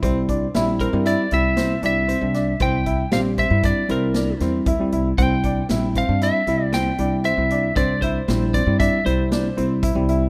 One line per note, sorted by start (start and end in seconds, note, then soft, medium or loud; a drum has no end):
0.02 0.44 C2 medium
0.02 0.46 G3 medium
0.02 0.17 C4 medium
0.02 0.47 C4 medium
0.02 0.47 E4 medium
0.02 kick medium
0.02 closed hi-hat medium
0.29 0.43 D4 medium
0.29 kick medium
0.29 closed hi-hat medium
0.55 0.85 A#1 medium
0.55 0.87 G3 medium
0.55 0.88 C4 medium
0.55 0.69 E4 medium
0.55 0.88 E4 loud
0.55 snare loud
0.55 closed hi-hat medium
0.80 0.95 C4 medium
0.80 1.05 A#4 medium
0.80 kick medium
0.80 closed hi-hat medium
0.93 1.14 G2 medium
0.93 1.25 G3 medium
0.93 1.26 C4 medium
0.93 1.26 E4 medium
1.06 1.20 E4 medium
1.06 1.33 D5 medium
1.06 closed hi-hat medium
1.31 1.73 C2 medium
1.31 1.75 G3 medium
1.31 1.76 C4 medium
1.31 1.46 E4 medium
1.31 1.76 E4 medium
1.31 1.81 E5 medium
1.31 closed hi-hat medium
1.57 1.72 C4 medium
1.57 snare medium
1.57 closed hi-hat medium
1.82 2.14 C2 medium
1.82 2.16 G3 medium
1.82 2.16 C4 medium
1.82 1.97 D4 medium
1.82 2.16 E4 medium
1.82 2.62 E5 medium
1.82 closed hi-hat medium
2.08 2.23 C4 medium
2.08 closed hi-hat medium
2.21 2.52 C2 medium
2.21 2.54 G3 medium
2.21 2.54 C4 medium
2.21 2.54 D4 medium
2.34 2.49 D4 medium
2.34 snare soft
2.34 closed hi-hat medium
2.60 3.01 C2 medium
2.60 3.04 G3 medium
2.60 2.75 C4 medium
2.60 3.04 C4 medium
2.60 3.04 E4 medium
2.60 3.12 G5 loud
2.60 kick medium
2.60 closed hi-hat medium
2.86 3.01 E4 medium
2.86 kick medium
2.86 closed hi-hat medium
3.12 3.43 A#1 medium
3.12 3.44 G3 medium
3.12 3.45 C4 medium
3.12 3.27 C4 medium
3.12 3.44 G4 medium
3.12 3.20 F5 medium
3.12 snare loud
3.12 closed hi-hat medium
3.38 3.53 C4 medium
3.38 3.65 E5 medium
3.38 kick medium
3.38 closed hi-hat medium
3.50 3.71 G2 medium
3.50 3.83 G3 medium
3.50 3.83 C4 medium
3.50 3.83 E4 medium
3.63 3.78 D4 medium
3.63 3.89 D5 medium
3.63 kick loud
3.63 closed hi-hat medium
3.89 4.31 C2 medium
3.89 4.32 G3 medium
3.89 4.32 C4 medium
3.89 4.04 C4 medium
3.89 4.32 E4 medium
3.89 4.38 A#4 medium
3.89 closed hi-hat medium
4.14 4.30 D4 medium
4.14 snare medium
4.14 closed hi-hat medium
4.40 4.64 E2 medium
4.40 4.73 G3 medium
4.40 4.73 C4 medium
4.40 4.56 C4 medium
4.40 4.73 E4 medium
4.40 snare soft
4.40 closed hi-hat medium
4.66 4.90 D2 medium
4.66 4.82 E4 medium
4.66 kick loud
4.66 closed hi-hat medium
4.80 5.12 G3 medium
4.80 5.12 C4 medium
4.80 5.13 E4 medium
4.92 5.16 C2 medium
4.92 5.07 E4 medium
4.92 closed hi-hat medium
5.18 5.59 C2 medium
5.18 5.62 G3 medium
5.18 5.33 C4 medium
5.18 5.62 C4 medium
5.18 5.62 E4 medium
5.18 5.66 G5 medium
5.18 kick medium
5.18 closed hi-hat medium
5.44 5.59 D4 medium
5.44 kick medium
5.44 closed hi-hat medium
5.69 6.00 A#1 medium
5.69 6.02 G3 medium
5.69 6.02 C4 medium
5.69 6.02 E4 medium
5.69 5.85 E4 medium
5.69 snare loud
5.69 closed hi-hat medium
5.95 6.11 C4 medium
5.95 6.21 F5 medium
5.95 kick medium
5.95 closed hi-hat medium
6.09 6.29 G2 medium
6.09 6.41 G3 medium
6.09 6.41 C4 medium
6.09 6.41 D4 medium
6.21 6.36 E4 medium
6.21 6.65 E5 medium
6.21 snare soft
6.21 closed hi-hat medium
6.47 6.88 C2 medium
6.47 6.91 G3 medium
6.47 6.91 C4 medium
6.47 6.62 E4 medium
6.47 6.91 E4 medium
6.47 closed hi-hat medium
6.65 6.76 D5 medium
6.73 6.88 C4 medium
6.73 7.27 G5 medium
6.73 snare medium
6.73 closed hi-hat medium
6.98 7.30 C2 medium
6.98 7.31 G3 medium
6.98 7.31 C4 medium
6.98 7.14 D4 medium
6.98 7.31 E4 medium
6.98 closed hi-hat medium
7.24 7.39 C4 medium
7.24 7.76 E5 medium
7.24 closed hi-hat medium
7.37 7.68 C2 medium
7.37 7.70 G3 medium
7.37 7.70 C4 medium
7.37 7.70 E4 medium
7.50 7.65 D4 medium
7.50 closed hi-hat medium
7.76 8.17 C2 medium
7.76 8.20 G3 medium
7.76 7.91 C4 medium
7.76 8.20 C4 medium
7.76 8.20 D4 medium
7.76 8.01 D5 medium
7.76 kick loud
7.76 closed hi-hat medium
8.02 8.18 E4 medium
8.02 8.55 C5 medium
8.02 kick medium
8.02 closed hi-hat medium
8.28 8.59 A#1 medium
8.28 8.61 G3 medium
8.28 8.43 C4 medium
8.28 8.61 C4 medium
8.28 8.61 E4 medium
8.28 snare medium
8.28 closed hi-hat medium
8.54 8.69 C4 medium
8.54 8.79 D5 medium
8.54 kick medium
8.54 closed hi-hat medium
8.66 8.87 G2 medium
8.66 8.99 G3 medium
8.66 8.99 C4 medium
8.66 8.99 E4 medium
8.80 8.94 D4 medium
8.80 9.04 E5 medium
8.80 kick loud
8.80 closed hi-hat medium
9.05 9.47 C2 medium
9.05 9.48 G3 medium
9.05 9.48 C4 medium
9.05 9.20 C4 medium
9.05 9.48 E4 medium
9.05 10.05 C5 medium
9.05 closed hi-hat medium
9.32 9.46 D4 medium
9.32 snare loud
9.32 closed hi-hat medium
9.57 9.88 C2 medium
9.57 9.89 G3 medium
9.57 9.72 C4 medium
9.57 9.89 C4 medium
9.57 9.89 E4 medium
9.57 closed hi-hat medium
9.83 9.97 E4 medium
9.83 kick loud
9.83 closed hi-hat medium
9.95 10.26 C2 medium
9.95 10.28 G3 medium
9.95 10.28 C4 medium
9.95 10.28 E4 medium
10.09 10.23 E4 medium
10.09 closed hi-hat medium